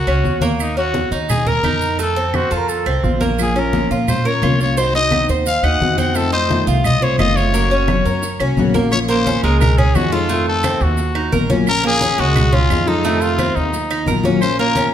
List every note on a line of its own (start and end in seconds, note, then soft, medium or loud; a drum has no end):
0.00 0.43 F#4 medium
0.07 0.23 C#2 medium
0.07 0.41 C#4 medium
0.07 high conga soft
0.07 claves medium
0.07 maracas soft
0.24 1.06 D#2 medium
0.24 high conga medium
0.24 maracas soft
0.41 0.76 A#3 medium
0.41 high conga medium
0.41 maracas medium
0.59 0.77 D#4 medium
0.59 high conga soft
0.59 claves medium
0.59 maracas loud
0.77 1.11 C#4 medium
0.77 1.10 F#4 medium
0.77 high conga soft
0.77 maracas soft
0.94 high conga medium
0.94 maracas soft
1.11 1.60 D#2 medium
1.11 1.46 D#4 medium
1.11 high conga soft
1.11 maracas medium
1.29 1.49 G#4 medium
1.29 high conga soft
1.29 low conga medium
1.29 claves medium
1.29 maracas loud
1.46 1.64 A#4 medium
1.46 1.99 A#4 loud
1.46 high conga soft
1.46 low conga medium
1.46 maracas soft
1.63 2.45 F2 medium
1.63 1.98 D#4 medium
1.63 high conga medium
1.63 claves medium
1.63 maracas soft
1.81 high conga soft
1.81 maracas medium
1.99 2.16 A3 medium
1.99 2.37 A4 medium
1.99 high conga soft
1.99 maracas medium
2.16 2.50 C4 medium
2.16 2.36 A4 medium
2.16 high conga soft
2.16 maracas soft
2.34 2.54 F#4 medium
2.34 2.59 C5 loud
2.34 high conga medium
2.34 claves medium
2.34 maracas soft
2.51 2.84 F2 medium
2.51 2.94 F4 medium
2.51 2.85 A4 medium
2.51 maracas medium
2.57 2.70 A#4 loud
2.69 3.05 A4 medium
2.69 high conga soft
2.69 maracas loud
2.86 3.02 C2 medium
2.86 3.20 C4 medium
2.86 high conga soft
2.86 claves medium
2.86 maracas soft
3.03 3.85 A#1 medium
3.03 3.30 F4 medium
3.03 high conga medium
3.03 maracas soft
3.21 3.54 A#3 medium
3.21 high conga medium
3.21 maracas medium
3.38 3.55 F3 medium
3.38 3.55 A#3 medium
3.38 3.55 C#4 medium
3.38 3.54 F4 medium
3.38 3.61 G#4 medium
3.38 high conga soft
3.38 claves medium
3.38 maracas medium
3.55 3.72 A#3 soft
3.55 3.89 C#4 medium
3.55 3.73 C#4 soft
3.55 3.72 F4 medium
3.55 3.92 A#4 medium
3.55 high conga soft
3.55 maracas soft
3.73 4.07 F3 medium
3.73 4.07 A#3 medium
3.73 4.07 C#4 medium
3.73 4.08 F4 medium
3.73 high conga medium
3.73 maracas soft
3.91 4.39 A#2 medium
3.91 4.24 F4 medium
3.91 high conga soft
3.91 maracas medium
4.08 4.29 C5 medium
4.08 muted steel-string acoustic guitar stroke medium
4.08 high conga soft
4.08 low conga medium
4.08 claves medium
4.08 maracas loud
4.24 4.41 A#3 soft
4.24 4.42 C#4 soft
4.24 4.41 F4 medium
4.24 4.42 A#4 medium
4.24 4.61 C#5 loud
4.24 high conga soft
4.24 maracas soft
4.42 5.24 C2 medium
4.42 4.59 F3 medium
4.42 4.59 A#3 medium
4.42 4.59 C#4 medium
4.42 4.76 F4 medium
4.42 4.58 F4 medium
4.42 high conga medium
4.42 claves medium
4.42 maracas soft
4.59 4.77 A#3 soft
4.59 4.77 C#4 soft
4.59 4.76 F4 medium
4.59 4.80 C#5 medium
4.59 high conga soft
4.59 maracas medium
4.77 4.94 C4 medium
4.77 4.94 D#4 medium
4.77 4.93 F#4 medium
4.77 4.94 C5 medium
4.77 high conga soft
4.77 maracas loud
4.94 5.28 D#4 medium
4.94 5.11 D#4 soft
4.94 5.11 F#4 soft
4.94 5.27 D#5 loud
4.94 high conga soft
4.94 maracas soft
5.11 5.45 C4 medium
5.11 5.46 D#4 medium
5.11 5.46 F#4 medium
5.11 high conga medium
5.11 claves medium
5.11 maracas soft
5.29 5.61 D#2 medium
5.29 5.63 C5 medium
5.29 maracas medium
5.46 5.65 F5 loud
5.46 muted steel-string acoustic guitar stroke medium
5.46 high conga soft
5.46 maracas loud
5.63 5.79 D#2 medium
5.63 5.97 D#4 medium
5.63 5.80 D#4 soft
5.63 5.80 F#4 soft
5.63 5.98 F#5 loud
5.63 high conga soft
5.63 claves medium
5.63 maracas soft
5.80 6.62 F2 medium
5.80 5.97 C4 medium
5.80 5.98 D#4 medium
5.80 5.96 F#4 medium
5.80 high conga medium
5.80 maracas soft
5.98 6.32 C4 medium
5.98 6.15 D#4 soft
5.98 6.15 F#4 soft
5.98 6.18 F#5 medium
5.98 high conga medium
5.98 maracas medium
6.14 6.31 C3 medium
6.14 6.32 D#3 medium
6.14 6.32 A3 medium
6.14 6.31 C4 medium
6.14 6.31 F4 medium
6.14 6.32 A4 medium
6.14 high conga soft
6.14 claves medium
6.14 maracas loud
6.32 6.48 A3 soft
6.32 6.48 C4 soft
6.32 6.66 D#4 medium
6.32 6.65 C5 loud
6.32 high conga soft
6.32 maracas soft
6.48 6.83 C3 medium
6.48 6.82 D#3 medium
6.48 6.83 A3 medium
6.48 6.83 C4 medium
6.48 6.83 F4 medium
6.48 high conga medium
6.48 maracas soft
6.67 7.16 C2 medium
6.67 7.01 F4 medium
6.67 high conga soft
6.67 maracas medium
6.84 7.05 D#5 loud
6.84 muted steel-string acoustic guitar stroke medium
6.84 high conga soft
6.84 low conga medium
6.84 claves medium
6.84 maracas medium
7.00 7.17 A3 soft
7.00 7.18 C4 soft
7.00 7.18 F4 soft
7.00 7.19 C5 medium
7.00 7.19 C#5 medium
7.00 high conga soft
7.00 maracas soft
7.18 8.00 F#1 medium
7.18 7.35 C3 medium
7.18 7.35 D#3 medium
7.18 7.35 A3 medium
7.18 7.34 C4 medium
7.18 7.53 F4 medium
7.18 7.33 F4 medium
7.18 7.38 D#5 loud
7.18 high conga medium
7.18 claves medium
7.18 maracas soft
7.35 7.53 A3 soft
7.35 7.53 C4 soft
7.35 7.52 F4 medium
7.35 8.57 C#5 medium
7.35 high conga soft
7.35 maracas medium
7.52 7.70 C#3 medium
7.52 7.70 F#3 medium
7.52 7.70 A#3 medium
7.52 7.71 A#3 medium
7.52 7.69 C#4 medium
7.52 7.68 F#4 medium
7.52 high conga soft
7.52 maracas loud
7.70 7.88 A#3 soft
7.70 7.88 C#4 medium
7.70 8.05 C#4 medium
7.70 7.87 F#4 medium
7.70 high conga soft
7.70 maracas soft
7.88 8.21 C#3 medium
7.88 8.21 F#3 medium
7.88 8.22 A#3 medium
7.88 8.22 C#4 medium
7.88 8.23 F#4 medium
7.88 high conga medium
7.88 claves medium
7.88 maracas soft
8.05 8.38 F#2 medium
8.05 8.39 A#4 medium
8.05 maracas medium
8.23 muted steel-string acoustic guitar stroke medium
8.23 high conga soft
8.23 maracas medium
8.40 8.56 C2 medium
8.40 8.57 A#3 soft
8.40 8.74 C#4 medium
8.40 8.57 C#4 soft
8.40 8.57 F#4 soft
8.40 high conga soft
8.40 claves medium
8.40 maracas soft
8.57 9.38 A#1 medium
8.57 8.74 C#3 medium
8.57 8.74 F#3 medium
8.57 8.75 A#3 medium
8.57 8.75 C#4 medium
8.57 8.74 F#4 medium
8.57 high conga medium
8.57 maracas soft
8.74 8.91 A#3 medium
8.74 8.91 A#3 soft
8.74 8.92 C#4 soft
8.74 8.91 F#4 medium
8.74 high conga medium
8.74 maracas medium
8.91 9.61 F3 medium
8.91 9.60 A#3 medium
8.91 9.61 C#4 medium
8.91 9.61 F4 medium
8.91 9.00 C#5 loud
8.91 high conga soft
8.91 claves medium
8.91 maracas medium
9.08 9.25 A#3 medium
9.08 9.41 C5 loud
9.08 high conga soft
9.08 maracas medium
9.27 9.43 C#4 medium
9.27 high conga medium
9.27 maracas medium
9.43 9.91 C#2 medium
9.43 9.77 G#3 medium
9.43 9.60 A#4 medium
9.43 high conga soft
9.43 maracas soft
9.60 9.79 A#4 loud
9.60 muted steel-string acoustic guitar stroke medium
9.60 high conga soft
9.60 low conga medium
9.60 claves medium
9.60 maracas medium
9.78 10.11 C#4 medium
9.78 9.97 G#4 medium
9.78 high conga soft
9.78 low conga medium
9.95 10.75 F2 medium
9.95 10.12 F3 medium
9.95 10.12 G#3 medium
9.95 10.12 D#4 medium
9.95 10.11 F4 medium
9.95 10.14 F#4 medium
9.95 high conga loud
9.95 claves medium
9.95 maracas medium
10.12 10.29 F3 medium
10.12 10.30 G#3 medium
10.12 10.29 D#4 medium
10.12 10.29 F4 medium
10.12 10.47 F4 loud
10.12 10.29 A4 medium
10.12 maracas soft
10.29 10.97 C3 medium
10.29 10.97 D#3 medium
10.29 10.63 A3 medium
10.29 10.98 A3 medium
10.29 10.98 C4 medium
10.29 11.34 F4 medium
10.29 high conga soft
10.29 maracas medium
10.47 10.85 A4 loud
10.47 high conga soft
10.63 10.81 C4 medium
10.63 high conga medium
10.63 claves medium
10.63 maracas medium
10.80 11.29 D#2 medium
10.80 11.33 F#4 medium
10.80 high conga soft
10.80 maracas soft
10.97 muted steel-string acoustic guitar stroke medium
10.97 high conga soft
10.97 maracas medium
11.15 11.32 D#4 medium
11.15 high conga soft
11.15 claves medium
11.32 12.13 A#1 medium
11.32 11.49 D#3 soft
11.32 11.49 F#3 medium
11.32 11.50 A#3 medium
11.32 11.49 F4 medium
11.32 11.49 A#4 medium
11.32 high conga medium
11.32 maracas medium
11.50 11.66 F#3 medium
11.50 11.67 A#3 medium
11.50 11.83 C#4 medium
11.50 11.66 F4 medium
11.50 high conga medium
11.50 maracas soft
11.67 12.36 F3 medium
11.67 12.35 A#3 medium
11.67 12.36 C#4 medium
11.67 12.36 F4 medium
11.67 11.84 A#4 loud
11.67 high conga soft
11.67 claves medium
11.67 maracas medium
11.84 12.01 A#3 medium
11.84 12.22 G#4 loud
11.84 high conga soft
12.01 12.18 C#4 medium
12.01 high conga medium
12.01 maracas medium
12.18 12.66 C#2 loud
12.18 12.52 G#3 medium
12.18 12.56 F#4 loud
12.18 high conga soft
12.18 maracas soft
12.36 muted steel-string acoustic guitar stroke medium
12.36 high conga soft
12.36 low conga loud
12.36 claves medium
12.36 maracas medium
12.53 12.86 C#4 medium
12.53 12.90 F4 loud
12.53 high conga soft
12.53 low conga medium
12.70 13.50 F2 medium
12.70 12.87 F3 medium
12.70 12.86 G#3 medium
12.70 12.86 D#4 medium
12.70 12.85 F4 medium
12.70 high conga medium
12.70 claves medium
12.70 maracas medium
12.86 13.04 F3 medium
12.86 13.04 G#3 medium
12.86 13.04 D#4 medium
12.86 13.23 D#4 medium
12.86 13.03 F4 medium
12.86 13.04 A4 medium
12.86 maracas soft
13.04 13.72 C3 medium
13.04 13.72 D#3 medium
13.04 13.38 A3 medium
13.04 13.73 A3 medium
13.04 13.73 C4 medium
13.04 14.09 F4 medium
13.04 high conga soft
13.04 maracas medium
13.21 13.57 F4 loud
13.21 high conga soft
13.21 maracas medium
13.39 13.55 C4 medium
13.39 high conga medium
13.39 claves medium
13.39 maracas medium
13.56 14.04 D#2 medium
13.56 14.07 D#4 medium
13.56 high conga soft
13.56 maracas soft
13.73 muted steel-string acoustic guitar stroke medium
13.73 high conga soft
13.73 maracas medium
13.90 14.07 D#4 medium
13.90 high conga soft
13.90 claves medium
13.90 maracas medium
14.06 14.88 A#1 medium
14.06 14.24 D#3 medium
14.06 14.24 F#3 medium
14.06 14.23 A#3 medium
14.06 14.22 F4 medium
14.06 14.24 A#4 medium
14.06 high conga medium
14.06 maracas medium
14.23 14.41 F#3 medium
14.23 14.41 A#3 medium
14.23 14.58 C#4 medium
14.23 14.40 F4 medium
14.23 high conga medium
14.23 maracas soft
14.41 14.94 F3 medium
14.41 14.94 A#3 medium
14.41 14.94 C#4 medium
14.41 14.94 F4 medium
14.41 14.57 C5 loud
14.41 high conga soft
14.41 claves medium
14.41 maracas medium
14.59 14.76 A#3 medium
14.59 14.91 A#4 loud
14.59 high conga soft
14.76 14.93 C#4 medium
14.76 high conga medium
14.76 maracas medium